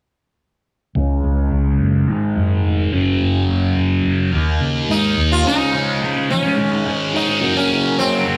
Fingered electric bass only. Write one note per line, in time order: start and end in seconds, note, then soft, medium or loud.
0.95 1.20 C#2 medium
1.24 1.49 C#2 medium
1.52 1.77 C#2 medium
1.79 2.04 F#1 medium
2.07 2.32 G#1 medium
2.36 2.61 F#2 medium
2.64 2.89 F1 medium
2.92 3.17 F#1 medium
3.21 3.45 F#1 medium
3.49 3.74 F#1 medium
3.76 4.01 F#1 medium
4.04 4.29 F#1 medium
4.33 4.58 D#2 medium
4.61 4.86 C#3 medium
4.89 5.14 G#2 medium
5.18 5.42 D#2 medium